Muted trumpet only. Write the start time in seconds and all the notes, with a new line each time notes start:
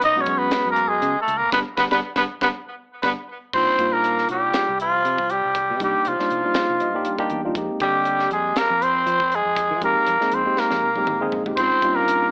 0.04 D#5
0.21 C#5
0.38 B4
0.70 A#4
0.88 G#4
1.21 A4
1.37 A#4
1.53 B4
1.77 B4
1.91 B4
2.16 B4
2.42 B4
3.03 B4
3.54 C5
3.93 A#4
4.31 G4
4.81 F4
5.31 G4
5.83 G4
6.08 F4
7.81 G4
8.32 G#4
8.58 A#4
8.83 C5
9.35 G#4
9.84 A#4
10.34 C5
10.59 A#4
11.56 C5
11.95 A#4